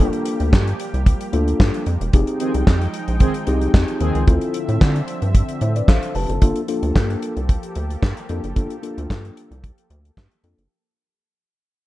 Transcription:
Already playing: analog synth pad F3 G3 A#3 G4
0.00 analog synth bass G1, tine electric piano A#3 D4 F4 A4
0.13 closed hi-hat
0.25 closed hi-hat
0.40 analog synth bass D2, closed hi-hat
0.53 analog synth bass G2, kick, snare, clap
0.67 closed hi-hat
0.80 closed hi-hat
0.94 analog synth bass C2, closed hi-hat
1.06 kick, closed hi-hat
1.21 closed hi-hat
1.33 analog synth bass D2, tine electric piano A#3 D4 F4 A4, closed hi-hat
1.48 closed hi-hat
1.60 analog synth bass G2, kick, snare, clap
1.74 closed hi-hat
1.86 analog synth bass F2, closed hi-hat
2.01 analog synth bass E1, closed hi-hat
2.13 analog synth bass F1, analog synth pad F3 G#3 D#4 G5, tine electric piano C4 D#4 G4 G#4, kick, closed hi-hat
2.27 closed hi-hat
2.40 analog polysynth D#3 C4 G#4, closed hi-hat
2.54 analog synth bass C2, closed hi-hat
2.67 analog synth bass F2, kick, snare, clap
2.81 closed hi-hat
2.94 closed hi-hat
3.08 analog synth bass A#1, closed hi-hat
3.20 analog polysynth D#3 C4 G#4, kick, closed hi-hat
3.34 closed hi-hat
3.47 analog synth bass C2, tine electric piano C4 D#4 G4 G#4, closed hi-hat
3.61 closed hi-hat
3.74 analog synth bass F2, kick, snare, clap
3.88 closed hi-hat
4.00 analog synth bass D#2, analog polysynth D#3 C4 G#4, closed hi-hat
4.15 analog synth bass C#2, closed hi-hat
4.27 analog synth bass D2, analog synth pad D3 C4 E5, tine electric piano C4 E4 F4 A4, kick, closed hi-hat
4.41 closed hi-hat
4.54 closed hi-hat
4.69 analog synth bass A2, closed hi-hat
4.81 analog synth bass D3, kick, snare, clap
4.96 closed hi-hat
5.08 closed hi-hat
5.22 analog synth bass G2, closed hi-hat
5.35 kick, closed hi-hat
5.49 closed hi-hat
5.61 analog synth bass A2, tine electric piano C5 E5, closed hi-hat
5.76 tine electric piano B4 D5, closed hi-hat
5.88 analog synth bass A1, tine electric piano A4 C5 F5, kick, snare, clap
6.03 closed hi-hat
6.15 analog synth bass F1, tine electric piano G4 B4 A5, open hi-hat
6.29 analog synth bass F#1, tine electric piano F4 A4, closed hi-hat
6.42 analog synth bass G1, analog synth pad F3 A#3 G4 A4, tine electric piano A#3 D4 F4 A4, kick, closed hi-hat
6.56 closed hi-hat
6.68 tine electric piano A#3 D4 F4 A4, closed hi-hat
6.83 analog synth bass D2, closed hi-hat
6.95 analog synth bass G2, kick, snare, clap
7.10 closed hi-hat
7.22 closed hi-hat
7.37 analog synth bass C2, closed hi-hat
7.49 kick, closed hi-hat
7.63 closed hi-hat
7.75 analog synth bass D2, closed hi-hat
7.90 closed hi-hat
8.03 analog synth bass G2, kick, snare, clap
8.17 closed hi-hat
8.29 analog synth bass F2, tine electric piano A#3 D4 F4 A4, closed hi-hat
8.44 analog synth bass F#1, closed hi-hat
8.56 analog synth bass G1, tine electric piano A#3 D4 F4 A4, kick, closed hi-hat
8.70 closed hi-hat
8.83 tine electric piano A#3 D4 F4 A4, closed hi-hat
8.98 analog synth bass D2, closed hi-hat
9.10 analog synth bass G2, kick, snare, clap
9.25 closed hi-hat
9.37 closed hi-hat
9.51 analog synth bass C2, closed hi-hat
9.64 kick, closed hi-hat
9.78 closed hi-hat
9.90 analog synth bass D2, closed hi-hat
10.05 closed hi-hat
10.17 analog synth bass G2, kick, snare, clap
10.31 closed hi-hat
10.44 analog synth bass F2, tine electric piano A#3 D4 F4 A4, closed hi-hat
10.58 analog synth bass F#1, closed hi-hat

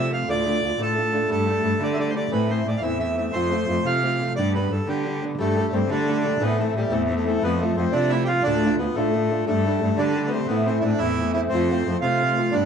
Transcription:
Already playing: cello C3, steel-string acoustic guitar A3 F4, accordion E5
0.09 steel-string acoustic guitar F3 A3 C4 F4, accordion F5
0.28 steel-string acoustic guitar D2 A2 D3 A3 D4 F4, cello D2, accordion D5
0.45 steel-string acoustic guitar D3 A3 D4 F4
0.61 cello D2, steel-string acoustic guitar D3 A3 D4 F4
0.77 steel-string acoustic guitar D2 A2 D3 A3 D4 F4, cello A2
0.82 accordion A4
0.94 steel-string acoustic guitar D3 A3 D4
0.98 steel-string acoustic guitar F4
1.11 steel-string acoustic guitar D3 A3 D4 F4
1.28 cello G2, steel-string acoustic guitar G3 A3 D4 G4, accordion A4
1.46 steel-string acoustic guitar G3 A3 D4 G4
1.62 cello G2, steel-string acoustic guitar G3 A3 D4 G4
1.79 cello D3, steel-string acoustic guitar G3 A3 D4 G4
1.83 accordion D5
1.94 steel-string acoustic guitar G3 A3, accordion E5
1.99 steel-string acoustic guitar D4 G4, accordion D5
2.10 steel-string acoustic guitar G3, accordion C5
2.14 steel-string acoustic guitar A3 D4 G4, accordion D5
2.30 steel-string acoustic guitar A2 E3 A3 C4 E4, cello A2, accordion B4
2.48 steel-string acoustic guitar E3 A3 C4 E4, accordion C5
2.65 cello A2, steel-string acoustic guitar E3 A3 C4 E4, accordion D5
2.77 accordion F5
2.82 cello E2, steel-string acoustic guitar A2 E3 A3 C4 E4, accordion E5
2.99 steel-string acoustic guitar E3 A3 C4 E4, accordion E5
3.16 steel-string acoustic guitar E3 A3 C4 E4, accordion E5
3.33 cello F2, steel-string acoustic guitar F3 A3 C4 F4, accordion C5
3.50 steel-string acoustic guitar F3 A3 C4 F4
3.67 cello F2, steel-string acoustic guitar F3 A3 C4 F4
3.83 cello C3, steel-string acoustic guitar F3 A3 C4 F4, accordion F5
4.02 steel-string acoustic guitar F3 A3 C4 F4
4.19 steel-string acoustic guitar F3 A3 C4 F4
4.36 cello G2, steel-string acoustic guitar G3 B3 D4 G4, accordion D5
4.54 steel-string acoustic guitar G3 B3 D4 G4, accordion B4
4.70 cello G2, steel-string acoustic guitar G3 B3 D4 G4, accordion A4
4.86 cello D3, steel-string acoustic guitar G3 B3 D4 G4, accordion G4
5.05 steel-string acoustic guitar G3 B3 D4 G4
5.21 steel-string acoustic guitar G3 B3 D4 G4
5.38 cello G2, steel-string acoustic guitar G3 A3 D4 G4, accordion A3
5.56 steel-string acoustic guitar G3 A3 D4
5.60 steel-string acoustic guitar G4
5.71 cello G2, steel-string acoustic guitar G3 A3 D4 G4, accordion C4
5.89 cello D3, steel-string acoustic guitar G3 A3 D4 G4, accordion D4
6.07 steel-string acoustic guitar G3 A3 D4 G4
6.23 steel-string acoustic guitar G3 A3 D4 G4
6.40 steel-string acoustic guitar A2 E3 A3 C4 E4, cello A2, accordion B3
6.58 steel-string acoustic guitar E3 A3 C4 E4, accordion A3
6.74 cello A2, steel-string acoustic guitar E3 A3 C4 E4, accordion G3
6.90 cello E2, steel-string acoustic guitar A2 E3 A3 C4 E4, accordion A3
7.04 accordion A3
7.09 steel-string acoustic guitar E3 A3 C4 E4
7.16 accordion A3
7.25 steel-string acoustic guitar E3 A3 C4 E4, accordion A3
7.42 cello F2, steel-string acoustic guitar F3 A3 C4 F4, accordion B3
7.59 steel-string acoustic guitar F3 A3 C4 F4, accordion A3
7.76 cello F2, steel-string acoustic guitar F3 A3 C4 F4, accordion C4
7.92 cello C3, steel-string acoustic guitar F3 A3 C4 F4, accordion D4
8.10 steel-string acoustic guitar F3 A3 C4 F4, accordion E4
8.24 steel-string acoustic guitar F3, accordion F4 G4
8.29 steel-string acoustic guitar A3 C4 F4
8.43 steel-string acoustic guitar D2 A2 D3 A3, cello D2, accordion D4
8.47 steel-string acoustic guitar D4 F4
8.63 steel-string acoustic guitar D3 A3 D4 F4
8.78 cello D2, steel-string acoustic guitar D3 A3 D4 F4, accordion B3
8.95 steel-string acoustic guitar D2 A2 D3 A3 D4 F4, cello A2, accordion A3
9.13 steel-string acoustic guitar D3 A3 D4 F4
9.29 steel-string acoustic guitar D3 A3 D4 F4
9.47 cello G2, steel-string acoustic guitar G3 A3 D4 G4, accordion A3
9.64 steel-string acoustic guitar G3 A3 D4 G4
9.81 cello G2, steel-string acoustic guitar G3 A3 D4 G4
9.97 cello D3, steel-string acoustic guitar G3 A3 D4 G4, accordion D4
10.14 steel-string acoustic guitar G3 A3 D4 G4
10.27 steel-string acoustic guitar G3, accordion B3 C4
10.32 steel-string acoustic guitar A3 D4 G4
10.47 steel-string acoustic guitar A2 E3 A3 C4 E4, cello A2, accordion B3
10.66 steel-string acoustic guitar E3 A3 C4 E4, accordion C4
10.80 cello A2, steel-string acoustic guitar E3 C4, accordion D4 E4
10.85 steel-string acoustic guitar A3 E4
10.98 cello E2, steel-string acoustic guitar A2 E3 C4, accordion E4
11.02 steel-string acoustic guitar A3 E4
11.18 steel-string acoustic guitar E3 A3 C4 E4
11.33 steel-string acoustic guitar E3 A3 C4 E4, accordion E4
11.49 cello F2, steel-string acoustic guitar F3, accordion C4
11.53 steel-string acoustic guitar A3 C4 F4
11.68 steel-string acoustic guitar F3 A3 C4 F4
11.86 cello F2, steel-string acoustic guitar F3 A3 C4 F4
12.01 cello C3, steel-string acoustic guitar F3 A3 C4 F4, accordion F4
12.19 steel-string acoustic guitar F3 A3 C4 F4
12.35 steel-string acoustic guitar F3 A3 C4 F4
12.52 cello G2, steel-string acoustic guitar G3 B3 D4 G4, accordion D4

